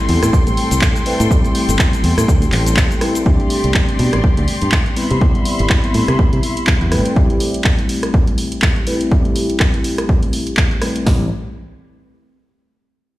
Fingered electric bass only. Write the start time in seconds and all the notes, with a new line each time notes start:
0.09 E2
0.23 A2
0.33 muted fingered electric bass stroke
0.47 A1
0.71 C2
1.20 A2
1.69 G1
2.04 E2
2.18 A2
2.28 D2
2.53 A1
3.26 D2
3.64 C2
3.99 B2
4.13 A1
4.38 D2
4.62 G2
5.11 C3
5.60 G1
5.95 A2
6.08 C3
6.33 C3
6.81 E2
6.92 A1
11.07 A1